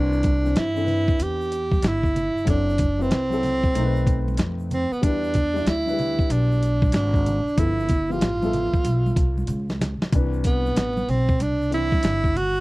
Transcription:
Already playing: C2 E3 C4 D4 B4
0.12 shaker
0.23 kick, closed hi-hat, high conga, low conga, shaker
0.43 E3 C4 D4 C5, snare, shaker
0.55 G2 E4, snare, closed hi-hat, shaker
0.74 E3 C4 D4 A4, shaker
0.84 B4, open hi-hat, low conga, shaker
1.08 muted upright bass stroke, kick, shaker
1.19 E2 G4, closed hi-hat, shaker
1.41 shaker
1.52 closed hi-hat, shaker
1.71 kick, high conga, shaker
1.82 G1, snare, closed hi-hat, shaker
1.87 E4
2.03 kick, shaker
2.16 closed hi-hat, low conga, shaker
2.35 muted upright bass stroke, shaker
2.45 F#1 F#3 C4 E4 A4, kick, closed hi-hat, shaker
2.49 D4
2.69 shaker
2.78 kick, closed hi-hat, high conga, low conga, shaker
2.98 F#3 C4 E4 B4, shaker
3.11 C2, snare, closed hi-hat, shaker
3.29 F#3 C4 E4 A4, shaker
3.43 snare, open hi-hat, low conga, shaker
3.63 kick, shaker
3.74 B1 A3 C4 D#4 A#4, closed hi-hat, shaker
3.84 B4
3.96 shaker
4.07 kick, closed hi-hat, shaker
4.28 high conga, shaker
4.37 F2, snare, closed hi-hat, shaker
4.60 shaker
4.71 C4, closed hi-hat, low conga, shaker
4.91 B3, muted upright bass stroke, shaker
5.01 E2 G3 D4 E4 B4, kick, closed hi-hat, shaker
5.23 shaker
5.34 kick, closed hi-hat, high conga, low conga, shaker
5.53 G3 D4 E4 D5, snare, shaker
5.66 D2 E4, snare, closed hi-hat, shaker
5.86 F#3 D4 E4 B4, shaker
5.92 G3
5.99 open hi-hat, low conga, shaker
6.19 muted upright bass stroke, kick, shaker
6.30 B1 D4, closed hi-hat, shaker
6.52 shaker
6.63 closed hi-hat, shaker
6.82 kick, high conga, shaker
6.92 G#1 D4, snare, closed hi-hat, shaker
7.14 kick, shaker
7.26 closed hi-hat, low conga, shaker
7.46 muted upright bass stroke, shaker
7.56 G1 F3 B3 E4 A4, kick, closed hi-hat, shaker
7.79 shaker
7.89 kick, closed hi-hat, low conga, shaker
8.09 F3 B3 E4 F4 G4, shaker
8.21 A1, snare, closed hi-hat, shaker
8.41 F3 B3 A4 E5, high conga, shaker
8.53 snare, closed hi-hat, low conga, shaker
8.73 muted upright bass stroke, kick, shaker
8.84 B1, closed hi-hat, high conga, shaker
9.06 high conga, shaker
9.16 C2, kick, closed hi-hat, shaker
9.38 high conga, shaker
9.47 C#2, closed hi-hat, shaker
9.70 snare, shaker
9.81 snare, closed hi-hat, low conga, shaker
10.01 muted upright bass stroke, snare, shaker
10.12 C2 C3 E3 D4 B4, kick, closed hi-hat, shaker
10.33 shaker
10.44 B3, kick, closed hi-hat, shaker
10.66 snare, shaker
10.76 A1, snare, closed hi-hat, shaker
10.97 high conga, shaker
11.08 B1 C4, open hi-hat, low conga, shaker
11.28 kick, shaker
11.40 C2 D4, closed hi-hat, high conga, shaker
11.62 shaker
11.71 E3 C4 D4 E4, closed hi-hat, shaker
11.92 muted upright bass stroke, kick, high conga, shaker
12.03 G1, snare, closed hi-hat, shaker
12.24 kick, shaker
12.36 F#4, closed hi-hat, low conga, shaker
12.57 shaker

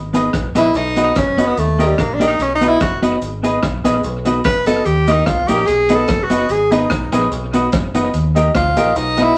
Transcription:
Already playing: G#1
0.13 B3 D#4 G#4 B4 D#5, closed hi-hat, cabasa
0.33 B1, kick, cross-stick, closed hi-hat, cabasa
0.55 A#1 B3 D#4 E4 G#4 B4 D#5, cross-stick, closed hi-hat, cabasa
0.74 B1 D#4, closed hi-hat, cabasa
0.96 B3 D#4 F#4 B4 D#5, closed hi-hat, cabasa
1.04 D#4
1.15 F#1 C#4, kick, cross-stick, closed hi-hat, cabasa
1.37 B3 D#4 F#4 B4 D#5, closed hi-hat, cabasa
1.46 B3
1.57 D#2 A3, closed hi-hat, cabasa
1.79 A#3 D#4 G4 A#4 D#5, closed hi-hat, cabasa
1.86 G3
1.98 A#1 A#3, kick, cross-stick, closed hi-hat, cabasa
2.14 D4
2.20 A#3 D#4 G4 A#4 D#5, closed hi-hat, cabasa
2.27 D#4
2.39 B1 C#4, closed hi-hat, cabasa
2.55 D#4
2.61 B3 D#4 F#4 B4 D#5, closed hi-hat, cabasa
2.69 E4
2.80 F#1 F#4, kick, cross-stick, closed hi-hat, cabasa
3.02 B3 D#4 F#4 B4 D#5, closed hi-hat, cabasa
3.22 G#1, muted clean electric guitar stroke, closed hi-hat, cabasa
3.43 B3 D#4 G#4 B4 D#5, closed hi-hat, cabasa
3.63 B1, kick, cross-stick, closed hi-hat, cabasa
3.84 A#1 B3 D#4 G#4 B4 D#5, cross-stick, closed hi-hat, cabasa
4.03 B1, closed hi-hat, cabasa
4.25 B3 D#4 F#4 B4 D#5, closed hi-hat, cabasa
4.44 F#1 B4, kick, cross-stick, closed hi-hat, cabasa
4.66 B3 D#4 F#4 A4 B4 D#5, closed hi-hat, cabasa
4.85 D#2 G4, closed hi-hat, cabasa
5.07 A#3 D#4 G4 A#4 D#5, closed hi-hat, cabasa
5.12 D#4
5.26 C2 F4, kick, cross-stick, closed hi-hat, cabasa
5.48 A#1 A#3 D#4 G4 A#4 D#5, closed hi-hat, cabasa
5.66 B1 G#4, closed hi-hat, cabasa
5.89 B3 D#4 F#4 B4 D#5, closed hi-hat, cabasa
5.95 A4
6.08 F#1, kick, cross-stick, closed hi-hat, cabasa
6.23 F#4
6.30 B3 D#4 F#4 B4 D#5, closed hi-hat, cabasa
6.49 G#1 G#4, muted clean electric guitar stroke, closed hi-hat, cabasa
6.71 B3 D#4 G#4 B4 D#5, closed hi-hat, cabasa
6.90 B1, kick, cross-stick, closed hi-hat, cabasa
7.12 A#1 B3 D#4 G#4 B4 D#5, cross-stick, closed hi-hat, cabasa
7.31 B1, closed hi-hat, cabasa
7.53 B3 D#4 F#4 B4 D#5, closed hi-hat, cabasa
7.72 F#1, kick, cross-stick, closed hi-hat, cabasa
7.94 B3 D#4 F#4 B4 D#5, closed hi-hat, cabasa
8.13 D#2, closed hi-hat, cabasa
8.35 A#3 D#4 G4 A#4 D#5, closed hi-hat, cabasa
8.55 D2 F4, kick, cross-stick, closed hi-hat, cabasa
8.76 A#1 A#3 D#4 G4 A#4 D#5, closed hi-hat, cabasa
8.96 B1 D#4, closed hi-hat, cabasa
9.17 B3 D#4 F#4 B4 D#5, closed hi-hat, cabasa
9.23 E4

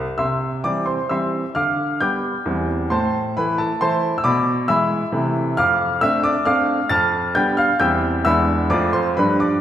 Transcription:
0.18 C3 E5 C6 E6
0.64 E3 G3 C4 D5 D6
0.86 C5 C6
1.09 E3 G3 C4 E5 C6 E6
1.55 D3 F5 D6 F6
2.01 G3 B3 G5 D6 G6
2.46 E2 E3 G3 C4
2.90 A2 C5 A5 C6
3.37 E3 A3 E4 B4 B5
3.58 A4 A5
3.81 E3 A3 E4 C5 A5 C6
4.18 E6
4.24 B2 D5 B5 D6
4.68 E3 G#3 E4 E5 B5 E6
5.12 C3 E3 A3 E4
5.57 F2 F5 D6 F6
6.01 A3 C4 D4 E5 E6
6.24 D5 D6
6.45 A3 C4 D4 F5 D6 F6
6.89 F2 A5 F6 A6
7.35 G3 B3 D4 G5 G6
7.57 F5 F6
7.80 E2 G3 C4 E4 G5 E6 G6
8.25 E2 G#3 B3 D4 E5 B5 E6
8.70 F2 F3 A3 F4 D5 D6
8.93 C5 C6
9.17 G2 F3 G3 D4 B4 B5
9.40 D5 D6

